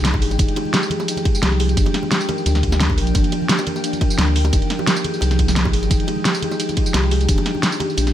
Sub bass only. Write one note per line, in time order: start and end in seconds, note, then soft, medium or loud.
0.00 0.23 C2 medium
0.22 0.37 G#1 medium
0.39 0.47 F1 loud
1.43 1.76 C2 medium
1.77 1.85 G1 loud
2.46 2.99 D2 medium
2.98 3.13 A#1 medium
3.15 3.23 G1 loud
4.18 4.52 D2 medium
4.53 4.61 F1 loud
5.22 5.75 C2 medium
5.73 5.89 G#1 medium
5.91 5.99 F1 loud
6.94 7.27 C2 loud
7.29 7.37 D#1 loud
7.98 8.13 A#1 medium